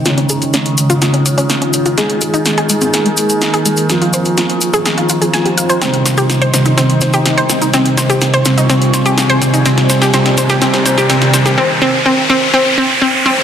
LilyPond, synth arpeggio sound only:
\new Staff \with { instrumentName = "Synth arpeggio sound" } { \time 4/4 \key aes \major \tempo 4 = 125 f'16 des'16 aes'16 r16 des'16 r8 f'16 f'16 des'16 des''16 des'16 des'16 des'16 r16 f'16 | aes16 r16 aes'16 ees'16 r16 aes'16 aes16 c'16 r16 aes16 r8. aes'16 aes16 r16 | aes'16 f'16 c''16 r16 f'16 r8 aes'16 aes'16 f'16 f'16 aes'16 aes''16 g'16 f''16 c''16 | c'16 r16 c''16 g'16 r16 c''16 c'16 ees'16 c'16 r16 c''16 g'16 r16 c''16 c'16 ees'16 |
c'16 r16 c''16 g'16 r16 c''16 c'16 ees'16 c'16 r16 c''16 g'16 r16 c''16 c'16 ees'16 | c'16 r16 c''16 g'16 c'16 r16 c''16 g'16 c'16 r16 c''16 g'16 c'16 r16 c''16 g'16 | c'16 r16 c'16 r16 c'16 r16 c'16 r16 c'16 r16 c'16 r16 c'16 r16 c'16 r16 | }